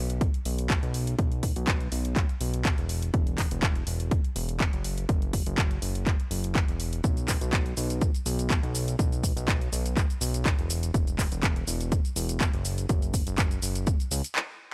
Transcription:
Already playing: B1
0.10 closed hi-hat
0.21 kick, closed hi-hat
0.34 closed hi-hat
0.45 B1, open hi-hat
0.58 closed hi-hat
0.70 kick, clap, closed hi-hat
0.83 B1, closed hi-hat
0.94 open hi-hat
1.07 closed hi-hat
1.19 kick, closed hi-hat
1.32 closed hi-hat
1.43 kick, open hi-hat
1.56 B1, closed hi-hat
1.67 kick, clap, closed hi-hat
1.80 closed hi-hat
1.92 B1, open hi-hat
2.05 closed hi-hat
2.16 kick, clap, closed hi-hat
2.29 closed hi-hat
2.41 B1, open hi-hat
2.54 closed hi-hat
2.65 kick, clap, closed hi-hat
2.78 E1, closed hi-hat
2.89 open hi-hat
3.02 closed hi-hat
3.14 E1, kick, closed hi-hat
3.27 closed hi-hat
3.38 kick, clap, open hi-hat
3.51 E1, closed hi-hat
3.63 kick, clap, closed hi-hat
3.76 closed hi-hat
3.87 E1, open hi-hat
4.00 closed hi-hat
4.11 kick, closed hi-hat
4.24 closed hi-hat
4.36 E1, open hi-hat
4.49 closed hi-hat
4.60 kick, clap, closed hi-hat
4.73 F#1, closed hi-hat
4.84 open hi-hat
4.98 closed hi-hat
5.09 F#1, kick, closed hi-hat
5.22 closed hi-hat
5.33 kick, open hi-hat
5.46 F#1, closed hi-hat
5.58 kick, clap, closed hi-hat
5.71 closed hi-hat
5.82 F#1, open hi-hat
5.95 closed hi-hat
6.06 kick, clap, closed hi-hat
6.20 closed hi-hat
6.31 F#1, open hi-hat
6.44 closed hi-hat
6.55 kick, clap, closed hi-hat
6.68 E1, closed hi-hat
6.80 open hi-hat
6.93 closed hi-hat
7.04 B1, kick, closed hi-hat, shaker
7.17 closed hi-hat, shaker
7.28 kick, clap, open hi-hat, shaker
7.41 B1, closed hi-hat, shaker
7.53 kick, clap, closed hi-hat, shaker
7.66 closed hi-hat
7.77 B1, open hi-hat, shaker
7.90 closed hi-hat, shaker
8.01 kick, closed hi-hat, shaker
8.15 closed hi-hat, shaker
8.26 B1, open hi-hat, shaker
8.39 closed hi-hat, shaker
8.50 kick, clap, closed hi-hat, shaker
8.63 B1, closed hi-hat
8.75 open hi-hat, shaker
8.88 closed hi-hat, shaker
8.99 B1, kick, closed hi-hat, shaker
9.12 closed hi-hat, shaker
9.23 kick, open hi-hat, shaker
9.37 B1, closed hi-hat, shaker
9.48 kick, clap, closed hi-hat, shaker
9.61 closed hi-hat
9.72 B1, open hi-hat, shaker
9.86 closed hi-hat, shaker
9.97 kick, clap, closed hi-hat, shaker
10.10 closed hi-hat, shaker
10.21 B1, open hi-hat, shaker
10.34 closed hi-hat, shaker
10.46 kick, clap, closed hi-hat, shaker
10.59 E1, closed hi-hat
10.70 open hi-hat, shaker
10.83 closed hi-hat, shaker
10.94 E1, kick, closed hi-hat, shaker
11.07 closed hi-hat, shaker
11.19 kick, clap, open hi-hat, shaker
11.32 E1, closed hi-hat, shaker
11.43 kick, clap, closed hi-hat, shaker
11.56 closed hi-hat
11.67 E1, open hi-hat, shaker
11.81 closed hi-hat, shaker
11.92 kick, closed hi-hat, shaker
12.05 closed hi-hat, shaker
12.16 E1, open hi-hat, shaker
12.29 closed hi-hat, shaker
12.40 kick, clap, closed hi-hat, shaker
12.53 F#1, closed hi-hat
12.65 open hi-hat, shaker
12.78 closed hi-hat, shaker
12.89 F#1, kick, closed hi-hat, shaker
13.02 closed hi-hat, shaker
13.14 kick, open hi-hat, shaker
13.27 F#1, closed hi-hat, shaker
13.38 kick, clap, closed hi-hat, shaker
13.51 closed hi-hat, shaker
13.62 F#1, open hi-hat, shaker
13.75 closed hi-hat, shaker
13.87 kick, closed hi-hat, shaker
14.00 closed hi-hat, shaker
14.11 C#2, open hi-hat, shaker
14.24 closed hi-hat, shaker
14.36 clap

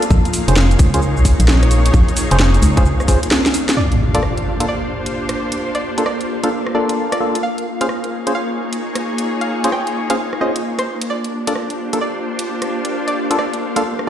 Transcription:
Already playing: A#3 D4 F4 G4 C5 F5
0.02 closed hi-hat, cabasa
0.11 A#1 D#4, kick, cabasa
0.25 closed hi-hat, cabasa
0.34 G#4, open hi-hat, cabasa
0.41 C#5
0.48 F1 C#4 F4 G#4 C5, closed hi-hat, cabasa
0.56 cross-stick, snare, cabasa
0.71 closed hi-hat, cabasa
0.79 C#2, kick, open hi-hat, cabasa
0.94 C#4 F4 G#4 C5, closed hi-hat, cabasa
1.02 cabasa
1.17 A#1, cabasa
1.25 kick, open hi-hat, cabasa
1.40 A#1, closed hi-hat, cabasa
1.48 snare, cabasa
1.63 cross-stick, closed hi-hat
1.71 open hi-hat, cabasa
1.86 closed hi-hat, cabasa
1.94 A#1, kick, cabasa
2.09 closed hi-hat, cabasa
2.17 open hi-hat, cabasa
2.31 F1 C#4 F4 G#4 C5, closed hi-hat, cabasa
2.40 cross-stick, snare, cabasa
2.54 closed hi-hat, cabasa
2.62 C#2, open hi-hat, cabasa
2.77 C#4 F4 G#4 C5, kick, closed hi-hat, cabasa
2.85 cabasa
3.00 cross-stick, cabasa
3.08 C#4 F4 G#4 C5, kick, open hi-hat, cabasa
3.23 closed hi-hat, cabasa
3.31 snare, cabasa
3.46 snare, closed hi-hat, cabasa
3.54 open hi-hat, cabasa
3.69 snare, closed hi-hat, cabasa
3.77 A#3 D4 F4 D5, impact
3.90 G4, closed hi-hat
4.15 A#3 D4 F4 A4 D5, closed hi-hat
4.20 C5, cross-stick
4.38 closed hi-hat
4.60 A#3 D4 F4 A4, closed hi-hat
4.68 D5
5.06 closed hi-hat
5.29 cross-stick, closed hi-hat
5.52 closed hi-hat
5.75 D5, closed hi-hat
5.98 A#3 D4 F4 A4, closed hi-hat
6.06 D5, cross-stick
6.21 closed hi-hat
6.43 A#3 D4 F4 A4 F5, closed hi-hat
6.66 cross-stick
6.75 A#3 D4 F4 A4 D5
6.89 closed hi-hat
7.12 D5, cross-stick, closed hi-hat
7.20 A#3 D4 F4 A4
7.35 closed hi-hat
7.43 A#3 F5
7.58 closed hi-hat
7.65 D#4
7.81 C#4 F4 G#4 C5 F5, closed hi-hat
7.89 cross-stick
8.01 G#4, closed hi-hat
8.16 C#5
8.27 C#4 F4 G#4 C5, closed hi-hat
8.35 F5
8.73 closed hi-hat
8.95 cross-stick, closed hi-hat
9.18 closed hi-hat
9.41 F5, closed hi-hat
9.64 C#4 F4 G#4 C5, closed hi-hat
9.72 G5, cross-stick
9.87 closed hi-hat
10.10 C#4 F4 G#4 C5 F5, closed hi-hat
10.33 cross-stick
10.41 C#4 F4 G#4 C5 D#5
10.56 closed hi-hat
10.79 C5, cross-stick, closed hi-hat
11.01 closed hi-hat
11.10 A#3 D4 F4 D5
11.24 closed hi-hat
11.29 G4
11.47 A#3 D4 F4 A4 D5, closed hi-hat
11.55 cross-stick
11.64 C5
11.70 closed hi-hat
11.88 F5
11.93 A#3 D4 F4 A4, closed hi-hat
12.01 D5
12.39 closed hi-hat
12.62 cross-stick, closed hi-hat
12.85 closed hi-hat
13.08 D5, closed hi-hat
13.31 A#3 D4 F4 A4, closed hi-hat
13.38 D5, cross-stick
13.53 closed hi-hat
13.76 A#3 D4 F4 A4 F5, closed hi-hat
13.99 cross-stick

